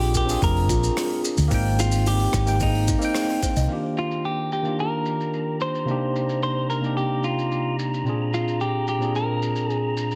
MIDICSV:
0, 0, Header, 1, 7, 480
1, 0, Start_track
1, 0, Key_signature, -3, "major"
1, 0, Tempo, 545455
1, 1334, Time_signature, 4, 2, 24, 8
1, 8934, End_track
2, 0, Start_track
2, 0, Title_t, "Synth texture"
2, 0, Program_c, 0, 99
2, 3253, Note_on_c, 0, 82, 72
2, 8934, Note_off_c, 0, 82, 0
2, 8934, End_track
3, 0, Start_track
3, 0, Title_t, "Kalimba"
3, 0, Program_c, 1, 108
3, 133, Note_on_c, 1, 70, 99
3, 199, Note_off_c, 1, 70, 0
3, 374, Note_on_c, 1, 68, 87
3, 484, Note_off_c, 1, 68, 0
3, 612, Note_on_c, 1, 65, 117
3, 729, Note_off_c, 1, 65, 0
3, 852, Note_on_c, 1, 70, 105
3, 919, Note_off_c, 1, 70, 0
3, 1093, Note_on_c, 1, 68, 78
3, 1203, Note_off_c, 1, 68, 0
3, 1336, Note_on_c, 1, 63, 101
3, 1451, Note_off_c, 1, 63, 0
3, 1575, Note_on_c, 1, 68, 97
3, 1641, Note_off_c, 1, 68, 0
3, 1819, Note_on_c, 1, 67, 83
3, 1926, Note_off_c, 1, 67, 0
3, 2056, Note_on_c, 1, 63, 98
3, 2171, Note_off_c, 1, 63, 0
3, 2300, Note_on_c, 1, 68, 98
3, 2363, Note_off_c, 1, 68, 0
3, 2536, Note_on_c, 1, 63, 82
3, 2651, Note_off_c, 1, 63, 0
3, 2776, Note_on_c, 1, 68, 87
3, 2841, Note_off_c, 1, 68, 0
3, 2897, Note_on_c, 1, 60, 76
3, 2960, Note_off_c, 1, 60, 0
3, 3015, Note_on_c, 1, 72, 105
3, 3124, Note_off_c, 1, 72, 0
3, 3139, Note_on_c, 1, 75, 83
3, 3244, Note_off_c, 1, 75, 0
3, 8934, End_track
4, 0, Start_track
4, 0, Title_t, "Clean electric guitar"
4, 0, Program_c, 2, 27
4, 0, Note_on_c, 2, 67, 95
4, 138, Note_off_c, 2, 67, 0
4, 149, Note_on_c, 2, 67, 94
4, 380, Note_off_c, 2, 67, 0
4, 384, Note_on_c, 2, 70, 104
4, 1064, Note_off_c, 2, 70, 0
4, 1583, Note_on_c, 2, 65, 102
4, 1826, Note_off_c, 2, 65, 0
4, 1826, Note_on_c, 2, 67, 107
4, 2267, Note_off_c, 2, 67, 0
4, 2310, Note_on_c, 2, 63, 84
4, 2987, Note_off_c, 2, 63, 0
4, 3508, Note_on_c, 2, 65, 69
4, 3725, Note_off_c, 2, 65, 0
4, 3742, Note_on_c, 2, 67, 75
4, 3975, Note_off_c, 2, 67, 0
4, 3986, Note_on_c, 2, 67, 74
4, 4204, Note_off_c, 2, 67, 0
4, 4226, Note_on_c, 2, 70, 85
4, 4905, Note_off_c, 2, 70, 0
4, 4942, Note_on_c, 2, 72, 97
4, 5650, Note_off_c, 2, 72, 0
4, 5660, Note_on_c, 2, 72, 87
4, 5891, Note_off_c, 2, 72, 0
4, 5895, Note_on_c, 2, 70, 86
4, 6129, Note_off_c, 2, 70, 0
4, 6132, Note_on_c, 2, 67, 76
4, 6373, Note_on_c, 2, 65, 71
4, 6381, Note_off_c, 2, 67, 0
4, 6820, Note_off_c, 2, 65, 0
4, 7340, Note_on_c, 2, 65, 69
4, 7560, Note_off_c, 2, 65, 0
4, 7577, Note_on_c, 2, 67, 80
4, 7799, Note_off_c, 2, 67, 0
4, 7820, Note_on_c, 2, 67, 82
4, 8058, Note_off_c, 2, 67, 0
4, 8062, Note_on_c, 2, 70, 82
4, 8554, Note_off_c, 2, 70, 0
4, 8554, Note_on_c, 2, 68, 82
4, 8743, Note_off_c, 2, 68, 0
4, 8934, End_track
5, 0, Start_track
5, 0, Title_t, "Tine electric piano"
5, 0, Program_c, 3, 4
5, 0, Control_c, 3, 64, 127
5, 0, Note_on_c, 3, 60, 87
5, 0, Note_on_c, 3, 62, 85
5, 0, Note_on_c, 3, 65, 78
5, 0, Note_on_c, 3, 68, 100
5, 209, Note_off_c, 3, 60, 0
5, 219, Note_off_c, 3, 62, 0
5, 220, Note_on_c, 3, 60, 89
5, 229, Note_off_c, 3, 65, 0
5, 238, Note_off_c, 3, 68, 0
5, 240, Note_on_c, 3, 62, 74
5, 257, Note_on_c, 3, 65, 81
5, 273, Note_on_c, 3, 68, 98
5, 1288, Note_off_c, 3, 60, 0
5, 1298, Note_off_c, 3, 62, 0
5, 1302, Note_on_c, 3, 58, 108
5, 1306, Note_off_c, 3, 65, 0
5, 1314, Note_off_c, 3, 68, 0
5, 1322, Note_on_c, 3, 60, 96
5, 1338, Note_on_c, 3, 63, 94
5, 1346, Control_c, 3, 64, 0
5, 1358, Note_on_c, 3, 79, 120
5, 1477, Control_c, 3, 64, 127
5, 2130, Note_off_c, 3, 58, 0
5, 2141, Note_off_c, 3, 60, 0
5, 2149, Note_off_c, 3, 63, 0
5, 2159, Note_off_c, 3, 79, 0
5, 2162, Note_on_c, 3, 58, 82
5, 2170, Note_on_c, 3, 60, 76
5, 2182, Note_on_c, 3, 63, 80
5, 2188, Note_on_c, 3, 79, 100
5, 2618, Note_off_c, 3, 58, 0
5, 2628, Note_off_c, 3, 60, 0
5, 2629, Note_on_c, 3, 58, 99
5, 2634, Note_off_c, 3, 63, 0
5, 2638, Note_off_c, 3, 79, 0
5, 2646, Note_on_c, 3, 60, 87
5, 2665, Note_on_c, 3, 63, 87
5, 2681, Note_on_c, 3, 79, 114
5, 3212, Note_off_c, 3, 58, 0
5, 3221, Note_off_c, 3, 60, 0
5, 3227, Note_on_c, 3, 51, 73
5, 3230, Note_off_c, 3, 63, 0
5, 3238, Note_off_c, 3, 79, 0
5, 3241, Note_on_c, 3, 58, 67
5, 3253, Note_on_c, 3, 62, 69
5, 3264, Control_c, 3, 64, 0
5, 3267, Note_on_c, 3, 65, 68
5, 3280, Note_on_c, 3, 67, 77
5, 3393, Control_c, 3, 64, 127
5, 4053, Note_off_c, 3, 51, 0
5, 4060, Note_off_c, 3, 58, 0
5, 4066, Note_off_c, 3, 62, 0
5, 4070, Note_on_c, 3, 51, 73
5, 4073, Note_off_c, 3, 65, 0
5, 4080, Note_off_c, 3, 67, 0
5, 4082, Note_on_c, 3, 58, 62
5, 4094, Note_on_c, 3, 62, 62
5, 4109, Note_on_c, 3, 65, 64
5, 4123, Note_on_c, 3, 67, 74
5, 5133, Note_off_c, 3, 51, 0
5, 5139, Note_off_c, 3, 58, 0
5, 5145, Note_off_c, 3, 62, 0
5, 5148, Note_on_c, 3, 48, 90
5, 5152, Note_off_c, 3, 65, 0
5, 5159, Note_off_c, 3, 67, 0
5, 5163, Note_on_c, 3, 58, 78
5, 5177, Note_on_c, 3, 62, 75
5, 5186, Control_c, 3, 64, 0
5, 5189, Note_on_c, 3, 63, 77
5, 5203, Note_on_c, 3, 67, 93
5, 5322, Control_c, 3, 64, 127
5, 5974, Note_off_c, 3, 48, 0
5, 5981, Note_off_c, 3, 58, 0
5, 5984, Note_on_c, 3, 48, 68
5, 5988, Note_off_c, 3, 62, 0
5, 5994, Note_off_c, 3, 63, 0
5, 5999, Note_on_c, 3, 58, 63
5, 6001, Note_off_c, 3, 67, 0
5, 6012, Note_on_c, 3, 62, 65
5, 6025, Note_on_c, 3, 63, 68
5, 6037, Note_on_c, 3, 67, 74
5, 7050, Note_off_c, 3, 48, 0
5, 7057, Note_off_c, 3, 58, 0
5, 7064, Note_off_c, 3, 62, 0
5, 7069, Note_on_c, 3, 46, 73
5, 7070, Note_off_c, 3, 63, 0
5, 7076, Note_off_c, 3, 67, 0
5, 7080, Note_on_c, 3, 60, 70
5, 7094, Note_on_c, 3, 62, 70
5, 7104, Control_c, 3, 64, 0
5, 7108, Note_on_c, 3, 65, 72
5, 7122, Note_on_c, 3, 68, 85
5, 7271, Control_c, 3, 64, 127
5, 7894, Note_off_c, 3, 46, 0
5, 7900, Note_off_c, 3, 60, 0
5, 7907, Note_off_c, 3, 62, 0
5, 7907, Note_on_c, 3, 46, 68
5, 7914, Note_off_c, 3, 65, 0
5, 7920, Note_on_c, 3, 60, 64
5, 7921, Note_off_c, 3, 68, 0
5, 7933, Note_on_c, 3, 62, 67
5, 7948, Note_on_c, 3, 65, 61
5, 7962, Note_on_c, 3, 68, 81
5, 8934, Note_off_c, 3, 46, 0
5, 8934, Note_off_c, 3, 60, 0
5, 8934, Note_off_c, 3, 62, 0
5, 8934, Note_off_c, 3, 65, 0
5, 8934, Note_off_c, 3, 68, 0
5, 8934, End_track
6, 0, Start_track
6, 0, Title_t, "Fingered electric bass"
6, 0, Program_c, 4, 33
6, 0, Note_on_c, 4, 34, 101
6, 307, Note_off_c, 4, 34, 0
6, 370, Note_on_c, 4, 29, 88
6, 611, Note_off_c, 4, 29, 0
6, 611, Note_on_c, 4, 34, 101
6, 772, Note_off_c, 4, 34, 0
6, 1214, Note_on_c, 4, 38, 92
6, 1293, Note_off_c, 4, 38, 0
6, 1332, Note_on_c, 4, 32, 97
6, 1988, Note_off_c, 4, 32, 0
6, 2054, Note_on_c, 4, 32, 93
6, 2589, Note_off_c, 4, 32, 0
6, 3137, Note_on_c, 4, 36, 95
6, 3214, Note_off_c, 4, 36, 0
6, 8934, End_track
7, 0, Start_track
7, 0, Title_t, "Drums"
7, 9, Note_on_c, 9, 46, 66
7, 97, Note_off_c, 9, 46, 0
7, 128, Note_on_c, 9, 82, 77
7, 131, Note_on_c, 9, 36, 55
7, 216, Note_off_c, 9, 82, 0
7, 219, Note_off_c, 9, 36, 0
7, 251, Note_on_c, 9, 46, 62
7, 257, Note_on_c, 9, 82, 66
7, 339, Note_off_c, 9, 46, 0
7, 345, Note_off_c, 9, 82, 0
7, 369, Note_on_c, 9, 46, 72
7, 371, Note_on_c, 9, 36, 110
7, 372, Note_on_c, 9, 82, 49
7, 457, Note_off_c, 9, 46, 0
7, 459, Note_off_c, 9, 36, 0
7, 460, Note_off_c, 9, 82, 0
7, 495, Note_on_c, 9, 46, 50
7, 583, Note_off_c, 9, 46, 0
7, 611, Note_on_c, 9, 36, 107
7, 613, Note_on_c, 9, 82, 84
7, 699, Note_off_c, 9, 36, 0
7, 701, Note_off_c, 9, 82, 0
7, 735, Note_on_c, 9, 82, 62
7, 823, Note_off_c, 9, 82, 0
7, 853, Note_on_c, 9, 37, 74
7, 856, Note_on_c, 9, 46, 75
7, 860, Note_on_c, 9, 82, 50
7, 941, Note_off_c, 9, 37, 0
7, 944, Note_off_c, 9, 46, 0
7, 948, Note_off_c, 9, 82, 0
7, 1097, Note_on_c, 9, 82, 82
7, 1185, Note_off_c, 9, 82, 0
7, 1209, Note_on_c, 9, 82, 55
7, 1216, Note_on_c, 9, 46, 51
7, 1297, Note_off_c, 9, 82, 0
7, 1304, Note_off_c, 9, 46, 0
7, 1329, Note_on_c, 9, 46, 82
7, 1329, Note_on_c, 9, 82, 50
7, 1332, Note_on_c, 9, 36, 125
7, 1417, Note_off_c, 9, 46, 0
7, 1417, Note_off_c, 9, 82, 0
7, 1420, Note_off_c, 9, 36, 0
7, 1456, Note_on_c, 9, 46, 43
7, 1544, Note_off_c, 9, 46, 0
7, 1577, Note_on_c, 9, 82, 77
7, 1665, Note_off_c, 9, 82, 0
7, 1686, Note_on_c, 9, 82, 63
7, 1692, Note_on_c, 9, 46, 52
7, 1774, Note_off_c, 9, 82, 0
7, 1780, Note_off_c, 9, 46, 0
7, 1813, Note_on_c, 9, 46, 81
7, 1817, Note_on_c, 9, 82, 50
7, 1901, Note_off_c, 9, 46, 0
7, 1905, Note_off_c, 9, 82, 0
7, 1929, Note_on_c, 9, 46, 56
7, 2017, Note_off_c, 9, 46, 0
7, 2050, Note_on_c, 9, 37, 77
7, 2055, Note_on_c, 9, 36, 55
7, 2056, Note_on_c, 9, 82, 84
7, 2138, Note_off_c, 9, 37, 0
7, 2143, Note_off_c, 9, 36, 0
7, 2144, Note_off_c, 9, 82, 0
7, 2173, Note_on_c, 9, 82, 55
7, 2177, Note_on_c, 9, 46, 58
7, 2261, Note_off_c, 9, 82, 0
7, 2265, Note_off_c, 9, 46, 0
7, 2288, Note_on_c, 9, 82, 49
7, 2290, Note_on_c, 9, 46, 77
7, 2296, Note_on_c, 9, 36, 102
7, 2376, Note_off_c, 9, 82, 0
7, 2378, Note_off_c, 9, 46, 0
7, 2384, Note_off_c, 9, 36, 0
7, 2418, Note_on_c, 9, 46, 57
7, 2506, Note_off_c, 9, 46, 0
7, 2533, Note_on_c, 9, 82, 96
7, 2536, Note_on_c, 9, 36, 103
7, 2621, Note_off_c, 9, 82, 0
7, 2624, Note_off_c, 9, 36, 0
7, 2652, Note_on_c, 9, 46, 49
7, 2656, Note_on_c, 9, 82, 58
7, 2740, Note_off_c, 9, 46, 0
7, 2744, Note_off_c, 9, 82, 0
7, 2768, Note_on_c, 9, 37, 76
7, 2777, Note_on_c, 9, 46, 82
7, 2777, Note_on_c, 9, 82, 54
7, 2856, Note_off_c, 9, 37, 0
7, 2865, Note_off_c, 9, 46, 0
7, 2865, Note_off_c, 9, 82, 0
7, 2899, Note_on_c, 9, 46, 54
7, 2987, Note_off_c, 9, 46, 0
7, 3015, Note_on_c, 9, 36, 58
7, 3016, Note_on_c, 9, 82, 90
7, 3103, Note_off_c, 9, 36, 0
7, 3104, Note_off_c, 9, 82, 0
7, 3131, Note_on_c, 9, 46, 51
7, 3137, Note_on_c, 9, 82, 59
7, 3219, Note_off_c, 9, 46, 0
7, 3225, Note_off_c, 9, 82, 0
7, 3249, Note_on_c, 9, 82, 44
7, 3337, Note_off_c, 9, 82, 0
7, 3494, Note_on_c, 9, 82, 67
7, 3582, Note_off_c, 9, 82, 0
7, 3618, Note_on_c, 9, 82, 51
7, 3706, Note_off_c, 9, 82, 0
7, 3736, Note_on_c, 9, 82, 42
7, 3824, Note_off_c, 9, 82, 0
7, 3977, Note_on_c, 9, 82, 72
7, 4065, Note_off_c, 9, 82, 0
7, 4090, Note_on_c, 9, 82, 55
7, 4178, Note_off_c, 9, 82, 0
7, 4215, Note_on_c, 9, 82, 40
7, 4303, Note_off_c, 9, 82, 0
7, 4449, Note_on_c, 9, 82, 68
7, 4537, Note_off_c, 9, 82, 0
7, 4580, Note_on_c, 9, 82, 53
7, 4668, Note_off_c, 9, 82, 0
7, 4695, Note_on_c, 9, 82, 40
7, 4783, Note_off_c, 9, 82, 0
7, 4931, Note_on_c, 9, 82, 67
7, 5019, Note_off_c, 9, 82, 0
7, 5060, Note_on_c, 9, 82, 57
7, 5148, Note_off_c, 9, 82, 0
7, 5173, Note_on_c, 9, 82, 46
7, 5261, Note_off_c, 9, 82, 0
7, 5417, Note_on_c, 9, 82, 66
7, 5505, Note_off_c, 9, 82, 0
7, 5536, Note_on_c, 9, 82, 51
7, 5624, Note_off_c, 9, 82, 0
7, 5652, Note_on_c, 9, 82, 43
7, 5740, Note_off_c, 9, 82, 0
7, 5895, Note_on_c, 9, 82, 70
7, 5983, Note_off_c, 9, 82, 0
7, 6018, Note_on_c, 9, 82, 52
7, 6106, Note_off_c, 9, 82, 0
7, 6139, Note_on_c, 9, 82, 42
7, 6227, Note_off_c, 9, 82, 0
7, 6367, Note_on_c, 9, 82, 74
7, 6455, Note_off_c, 9, 82, 0
7, 6500, Note_on_c, 9, 82, 49
7, 6588, Note_off_c, 9, 82, 0
7, 6614, Note_on_c, 9, 82, 39
7, 6702, Note_off_c, 9, 82, 0
7, 6856, Note_on_c, 9, 82, 85
7, 6944, Note_off_c, 9, 82, 0
7, 6986, Note_on_c, 9, 82, 51
7, 7074, Note_off_c, 9, 82, 0
7, 7094, Note_on_c, 9, 82, 40
7, 7182, Note_off_c, 9, 82, 0
7, 7338, Note_on_c, 9, 82, 69
7, 7426, Note_off_c, 9, 82, 0
7, 7462, Note_on_c, 9, 82, 49
7, 7550, Note_off_c, 9, 82, 0
7, 7573, Note_on_c, 9, 82, 48
7, 7661, Note_off_c, 9, 82, 0
7, 7810, Note_on_c, 9, 82, 71
7, 7898, Note_off_c, 9, 82, 0
7, 7936, Note_on_c, 9, 82, 51
7, 8024, Note_off_c, 9, 82, 0
7, 8053, Note_on_c, 9, 82, 44
7, 8141, Note_off_c, 9, 82, 0
7, 8292, Note_on_c, 9, 82, 68
7, 8380, Note_off_c, 9, 82, 0
7, 8409, Note_on_c, 9, 82, 52
7, 8497, Note_off_c, 9, 82, 0
7, 8536, Note_on_c, 9, 82, 42
7, 8624, Note_off_c, 9, 82, 0
7, 8774, Note_on_c, 9, 82, 78
7, 8862, Note_off_c, 9, 82, 0
7, 8899, Note_on_c, 9, 82, 50
7, 8934, Note_off_c, 9, 82, 0
7, 8934, End_track
0, 0, End_of_file